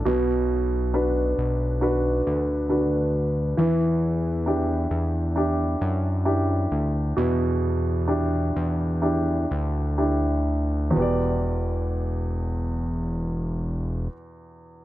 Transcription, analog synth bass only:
X:1
M:4/4
L:1/8
Q:1/4=66
K:Em
V:1 name="Analog synth bass" clef=bass
B,,,3 B,,,2 D,,3 | E,,3 E,,2 F,,2 D,, | E,,3 E,,2 D,,3 | E,,,8 |]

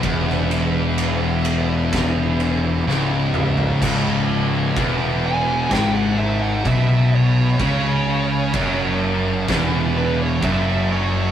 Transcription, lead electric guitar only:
X:1
M:4/4
L:1/16
Q:1/4=64
K:C#m
V:1 name="Lead electric guitar"
z16 | z6 g2 =g f e f e2 c2- | c6 z4 B c e2 c2 |]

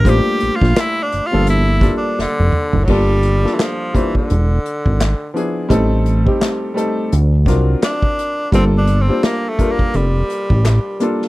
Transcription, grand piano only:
X:1
M:4/4
L:1/16
Q:"Swing 16ths" 1/4=85
K:Gdor
V:1 name="Grand piano"
[G,A,B,DFc]6- [G,A,B,DFc] [F,G,B,DA]3 [G,B,DFA]6 | [G,B,DFA]3 [G,B,DFA]3 [G,B,DFc]2 z6 [F,=B,DE^G]2 | [G,A,C_EA]3 [G,A,CEG]3 [G,A,CEA]2 z2 [^F,CD^E^A]6 | [G,B,DFA]3 [G,B,DFc]3 [G,B,DFB]6- [G,B,DFB] z [G,B,DFA]2 |]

